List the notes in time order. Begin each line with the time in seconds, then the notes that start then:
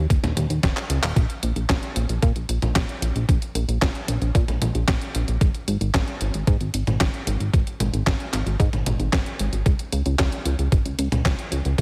0.10 D#1, kick, closed hi-hat
0.23 D#2, snare, closed hi-hat, high tom
0.37 D#2, closed hi-hat, high tom
0.50 D#2, closed hi-hat
0.63 D#1, kick, snare, closed hi-hat
0.77 clap, closed hi-hat
0.90 C#2, closed hi-hat
1.03 D#1, clap, closed hi-hat
1.16 A#1, kick, closed hi-hat
1.30 closed hi-hat
1.43 A#1, closed hi-hat
1.56 A#1, closed hi-hat
1.69 A#1, kick, snare, clap, closed hi-hat
1.83 closed hi-hat
1.96 A#1, closed hi-hat
2.09 A#1, closed hi-hat
2.22 A#2, kick, closed hi-hat
2.36 A#1, closed hi-hat
2.49 A#1, closed hi-hat
2.62 A#1, closed hi-hat, high tom
2.76 A#1, kick, snare, clap, closed hi-hat
2.89 closed hi-hat
3.02 A#1, closed hi-hat
3.15 A#1, closed hi-hat
3.29 A#1, kick, closed hi-hat
3.42 closed hi-hat
3.55 A#1, closed hi-hat
3.68 A#1, closed hi-hat
3.82 A#1, kick, snare, clap, closed hi-hat
3.95 closed hi-hat
4.08 A#1, closed hi-hat
4.22 A#1, closed hi-hat
4.35 A#2, kick, closed hi-hat
4.48 A#1, closed hi-hat, high tom
4.62 A#1, closed hi-hat, high tom
4.75 A#1, closed hi-hat
4.88 A#1, kick, snare, clap, closed hi-hat
5.01 closed hi-hat
5.15 A#1, closed hi-hat
5.28 A#1, closed hi-hat
5.41 G#1, kick, closed hi-hat
5.55 closed hi-hat
5.68 G#1, closed hi-hat
5.81 G#1, closed hi-hat
5.94 G#1, kick, snare, clap, closed hi-hat
6.08 closed hi-hat
6.21 G#1, closed hi-hat
6.34 G#1, closed hi-hat
6.47 G#2, kick, closed hi-hat
6.61 G#1, closed hi-hat
6.74 G#1, closed hi-hat
6.87 G#1, closed hi-hat, high tom
7.00 G#1, kick, snare, clap, closed hi-hat
7.14 closed hi-hat
7.27 G#1, closed hi-hat
7.40 G#1, closed hi-hat
7.54 G#1, kick, closed hi-hat
7.67 closed hi-hat
7.80 G#1, closed hi-hat, high tom
7.93 G#1, closed hi-hat
8.07 G#1, kick, snare, clap, closed hi-hat
8.20 closed hi-hat
8.33 G#1, clap, closed hi-hat
8.46 G#1, closed hi-hat
8.60 G#2, kick, closed hi-hat
8.73 G#1, closed hi-hat, high tom
8.86 G#1, closed hi-hat, high tom
9.00 G#1, closed hi-hat
9.13 G#1, kick, snare, clap, closed hi-hat
9.26 closed hi-hat
9.39 G#1, closed hi-hat
9.53 G#1, closed hi-hat
9.66 C#2, kick, closed hi-hat
9.79 closed hi-hat
9.92 C#2, closed hi-hat
10.06 C#2, closed hi-hat
10.19 C#2, kick, snare, clap, closed hi-hat
10.32 closed hi-hat
10.46 C#2, closed hi-hat
10.59 C#2, closed hi-hat
10.72 G#1, kick, closed hi-hat
10.85 C#2, closed hi-hat
10.98 C#2, closed hi-hat
11.12 C#2, closed hi-hat, high tom
11.25 C#2, kick, snare, clap, closed hi-hat
11.39 closed hi-hat
11.52 C#2, closed hi-hat
11.65 C#2, closed hi-hat
11.78 C#2, kick, closed hi-hat